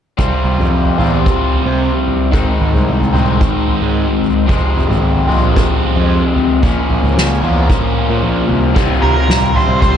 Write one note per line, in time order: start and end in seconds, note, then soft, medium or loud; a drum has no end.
0.17 0.30 C2 medium
0.17 0.97 C3 medium
0.17 0.97 G3 medium
0.17 0.99 C4 medium
0.17 0.97 F4 medium
0.17 kick medium
0.17 floor tom medium
0.44 0.56 C2 medium
0.44 floor tom medium
0.58 0.69 F2 medium
0.58 floor tom medium
0.70 0.94 F2 medium
0.85 floor tom medium
0.98 1.22 E2 medium
0.98 2.32 C3 medium
0.98 2.33 G3 medium
0.98 2.34 C4 medium
0.98 2.31 F4 medium
0.98 floor tom medium
0.98 mid tom medium
1.26 kick medium
1.26 floor tom medium
1.54 floor tom medium
1.66 1.89 C3 medium
2.08 floor tom medium
2.31 2.45 G#1 medium
2.31 3.11 G#2 medium
2.31 3.12 D#3 medium
2.31 3.14 G#3 medium
2.31 3.13 C4 medium
2.31 3.12 D#4 medium
2.31 kick loud
2.31 floor tom medium
2.60 2.72 G#1 medium
2.60 floor tom medium
2.74 2.86 C2 medium
2.74 floor tom medium
2.89 3.11 C2 medium
3.01 floor tom medium
3.13 3.38 C2 medium
3.13 4.47 G#2 medium
3.13 4.47 D#3 medium
3.13 4.47 G#3 medium
3.13 4.46 C4 medium
3.13 4.46 D#4 medium
3.13 floor tom medium
3.13 mid tom medium
3.41 kick medium
3.41 floor tom medium
3.68 floor tom medium
3.82 4.05 G#2 medium
4.22 floor tom medium
4.47 4.60 F1 medium
4.47 5.26 F2 medium
4.47 5.27 C3 medium
4.47 5.29 F3 medium
4.47 5.27 G#3 medium
4.47 5.27 C4 medium
4.47 kick medium
4.47 floor tom medium
4.76 4.87 F1 medium
4.76 floor tom medium
4.90 5.01 G#1 medium
4.90 floor tom medium
5.02 5.25 G#1 medium
5.16 floor tom medium
5.28 5.52 A#1 medium
5.28 6.62 F2 medium
5.28 6.62 C3 medium
5.28 6.63 F3 medium
5.28 6.61 G#3 medium
5.28 6.61 C4 medium
5.28 floor tom medium
5.28 mid tom medium
5.56 kick loud
5.56 floor tom medium
5.82 floor tom medium
5.96 6.19 F2 medium
6.36 floor tom medium
6.63 6.75 A#1 medium
6.63 7.41 A#2 medium
6.63 7.42 F3 medium
6.63 7.42 A#3 medium
6.63 7.40 C#4 medium
6.63 kick loud
6.63 floor tom medium
6.90 7.01 A#1 medium
6.90 floor tom medium
7.03 7.14 C#2 medium
7.03 floor tom medium
7.16 7.40 C#2 medium
7.16 snare medium
7.41 7.66 E2 medium
7.41 8.74 A#2 medium
7.41 8.75 F3 medium
7.41 8.75 A#3 medium
7.41 8.74 C#4 medium
7.41 floor tom medium
7.69 kick loud
7.69 floor tom medium
7.69 mid tom medium
8.10 8.21 A#2 medium
8.23 8.47 A#1 medium
8.49 8.74 C2 medium
8.49 floor tom medium
8.75 8.88 C2 medium
8.75 9.54 C3 medium
8.75 9.54 G3 medium
8.75 9.55 C4 medium
8.75 9.53 F4 medium
8.75 kick loud
8.75 floor tom medium
8.75 crash medium
8.90 floor tom medium
9.02 9.14 C3 medium
9.02 9.58 A#4 medium
9.02 floor tom medium
9.28 9.52 C2 medium
9.28 snare medium
9.28 mid tom medium
9.42 floor tom medium
9.54 9.97 C3 medium
9.54 9.97 G3 medium
9.54 9.97 C4 medium
9.54 9.97 F4 medium
9.54 9.80 C5 medium
9.54 floor tom medium
9.68 9.97 C2 medium
9.81 9.97 C5 loud
9.81 kick loud
9.81 floor tom medium